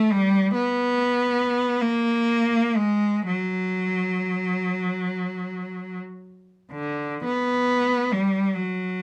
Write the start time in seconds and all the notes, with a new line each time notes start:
Already playing: A3
0.12 G3
0.54 B3
1.81 A#3
2.76 G#3
3.27 F#3
6.72 D3
7.25 B3
8.12 G3
8.55 F#3